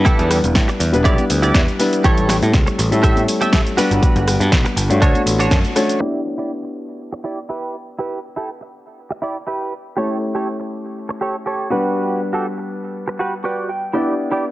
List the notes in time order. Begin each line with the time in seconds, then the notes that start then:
0.05 G3 B3 D4 E4 G4 A4 B4, muted picked electric bass stroke, kick, closed hi-hat, shaker
0.19 E2, closed hi-hat, low conga, shaker
0.31 cross-stick, open hi-hat, shaker
0.44 E1, closed hi-hat, high conga, shaker
0.55 A2, kick, snare, closed hi-hat, shaker
0.68 muted clean electric guitar stroke, closed hi-hat, shaker
0.80 E2, muted clean electric guitar stroke, open hi-hat, shaker
0.93 E1 G3 B3 D4 E4 B4, closed hi-hat, shaker
1.04 B1 E4 G4 D5, kick, cross-stick, closed hi-hat, shaker
1.18 muted picked electric bass stroke, closed hi-hat, high conga, shaker
1.30 D2, open hi-hat, shaker
1.42 E4 G4 D5, closed hi-hat, shaker
1.54 E2, kick, snare, closed hi-hat, shaker
1.68 closed hi-hat, shaker
1.79 G3 B3 D4 E4 B4, muted clean electric guitar stroke, open hi-hat, shaker
1.93 closed hi-hat, shaker
2.03 A1 G3 A3 C#4 E4 G4 A4 C#5, kick, closed hi-hat, shaker
2.17 closed hi-hat, low conga, shaker
2.29 cross-stick, snare, open hi-hat, shaker
2.42 A2, closed hi-hat, high conga, shaker
2.53 C#2, kick, snare, closed hi-hat, shaker
2.66 muted clean electric guitar stroke, closed hi-hat, shaker
2.79 A1, muted clean electric guitar stroke, open hi-hat, shaker
2.91 A2 G3 A3 C#4 E4 A4, closed hi-hat, shaker
3.03 G4 A4 E5, kick, cross-stick, closed hi-hat, shaker
3.16 closed hi-hat, high conga, shaker
3.28 open hi-hat, shaker
3.41 G4 A4 E5, closed hi-hat, high conga, shaker
3.53 kick, snare, closed hi-hat, low conga, shaker
3.67 closed hi-hat, shaker
3.77 G3 B3 D4 F#4 G4 B4, muted picked electric bass stroke, open hi-hat, shaker
3.91 G1, closed hi-hat, shaker
4.02 G3 B3 D4 B4 F#5, kick, closed hi-hat, shaker
4.16 G1, closed hi-hat, low conga, shaker
4.28 cross-stick, open hi-hat, shaker
4.40 G2, closed hi-hat, high conga, shaker
4.52 B1, kick, snare, closed hi-hat, shaker
4.65 muted clean electric guitar stroke, closed hi-hat, shaker
4.76 G1, muted clean electric guitar stroke, open hi-hat, shaker
4.89 G2 A3 D4 F#4 C#5, closed hi-hat, shaker
5.02 D2 D4 F#4 C#5, kick, cross-stick, closed hi-hat, shaker
5.15 muted picked electric bass stroke, closed hi-hat, high conga, shaker
5.26 A1, open hi-hat, shaker
5.39 D4 F#4 C#5, closed hi-hat, shaker
5.51 F#2, kick, snare, closed hi-hat, shaker
5.65 closed hi-hat, shaker
5.76 A3 C#4 D4 F#4 C#5, muted clean electric guitar stroke, cross-stick, open hi-hat, shaker
5.89 closed hi-hat, shaker
6.00 B3 D4 E4 G4 D5, crash
6.38 E4 G4 D5
6.63 muted clean electric guitar stroke
7.12 muted clean electric guitar stroke
7.24 E4 G4 D5
7.49 E4 G4 B4
7.99 E4 G4 B4
8.36 E4 G4 A4
8.61 muted clean electric guitar stroke
9.10 muted clean electric guitar stroke
9.22 E4 G4 D5
9.47 E4 G4 B4
9.97 A3 C#4 E4 G4 A4 C#5
10.35 G4 A4 C#5
10.60 muted clean electric guitar stroke
11.09 muted clean electric guitar stroke
11.21 G4 A4 C#5
11.46 G4 A4 C#5
11.70 G3 B3 D4 F#4 G4 B4 F#5
12.33 F#4 G4 A4
12.58 muted clean electric guitar stroke
13.08 muted clean electric guitar stroke
13.19 F#4 G4 B4
13.44 F#4 G4 B4 D5
13.69 G5
13.93 B3 D4 E4 G4 D5
14.31 E4 G4 D5